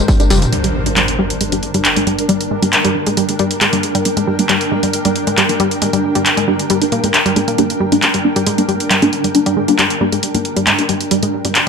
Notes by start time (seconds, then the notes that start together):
Already playing: D4 A#4 C5
0.08 G3, kick, open hi-hat, tambourine
0.20 G3 A#3 D4, closed hi-hat, tambourine
0.30 F1 G3, open hi-hat, tambourine
0.42 closed hi-hat, mid tom, tambourine
0.52 G3 A#3 D4, closed hi-hat, impact
0.60 G3 A#4, closed hi-hat
0.86 G3 G#3 A#3 D4 G5, closed hi-hat
0.97 G3, clap, closed hi-hat
1.08 closed hi-hat
1.19 G3 A#3 D4
1.30 closed hi-hat
1.41 G#3, closed hi-hat
1.52 G3 A#3 D4, closed hi-hat
1.63 closed hi-hat
1.74 G3, closed hi-hat
1.85 clap, closed hi-hat
1.96 G3 G#3 A#3 D4, closed hi-hat
2.07 G3, closed hi-hat
2.19 closed hi-hat
2.29 G3 A#3 D4, closed hi-hat
2.41 closed hi-hat
2.51 G#3
2.62 G3 A#3 D4, closed hi-hat
2.73 clap, closed hi-hat
2.85 G3, closed hi-hat
2.95 G3 A#3 D4
3.07 G#3, closed hi-hat
3.17 G3, closed hi-hat
3.29 G3 A#3 D4, closed hi-hat
3.39 G3, closed hi-hat
3.51 closed hi-hat
3.61 G#3, clap, closed hi-hat
3.73 G3 A#3 D4, closed hi-hat
3.83 closed hi-hat
3.95 G3, closed hi-hat
4.05 G3 A#3 D4, closed hi-hat
4.17 G#3, closed hi-hat
4.27 G3
4.39 G3 A#3 D4, closed hi-hat
4.49 G3, clap, closed hi-hat
4.61 closed hi-hat
4.71 G3 G#3 A#3 D4
4.83 G3, closed hi-hat
4.93 closed hi-hat
5.05 G3 A#3 D4, closed hi-hat
5.16 closed hi-hat
5.27 G#3, closed hi-hat
5.38 G3, clap, closed hi-hat
5.49 G3 A#3 D4, closed hi-hat
5.60 G3, closed hi-hat
5.71 closed hi-hat
5.82 G3 G#3 A#3 D4, closed hi-hat
5.93 G3, closed hi-hat
6.15 G3 A#3 D4, closed hi-hat
6.26 clap, closed hi-hat
6.37 G#3, closed hi-hat
6.48 G3 A#3 D4
6.59 closed hi-hat
6.70 G3, closed hi-hat
6.82 G3 A#3 D4, closed hi-hat
6.92 A#3, closed hi-hat
7.04 G3 G#3 A#3 D4, closed hi-hat
7.14 clap, closed hi-hat
7.26 G3, closed hi-hat
7.36 G3 G#3 A#3 D4, closed hi-hat
7.48 A#3, closed hi-hat
7.58 G3 A#3 D4, closed hi-hat
7.70 closed hi-hat
7.80 G3
7.92 G3 G#3 A#3 D4, closed hi-hat
8.03 clap, closed hi-hat
8.14 G3, closed hi-hat
8.24 G3 A#3 D4
8.36 G3, closed hi-hat
8.47 G#3, closed hi-hat
8.58 G3 A#3 D4, closed hi-hat
8.69 G3, closed hi-hat
8.80 closed hi-hat
8.91 G3, clap, closed hi-hat
9.02 G3 G#3 A#3 D4, closed hi-hat
9.13 closed hi-hat
9.24 G3, closed hi-hat
9.35 G3 A#3 D4, closed hi-hat
9.46 G3, closed hi-hat
9.57 G#3
9.68 G3 A#3 D4, closed hi-hat
9.79 G3, clap, closed hi-hat
9.90 closed hi-hat
10.01 G3 A#3 D4
10.12 G#3, closed hi-hat
10.23 closed hi-hat
10.34 G3 A#3 D4, closed hi-hat
10.45 closed hi-hat
10.56 G3, closed hi-hat
10.67 G#3, clap, closed hi-hat
10.79 G3 A#3 D4, closed hi-hat
10.89 G3, closed hi-hat
11.01 closed hi-hat
11.11 G3 A#3 D4, closed hi-hat
11.23 G#3, closed hi-hat
11.45 G3 A#3 D4, closed hi-hat
11.55 clap, closed hi-hat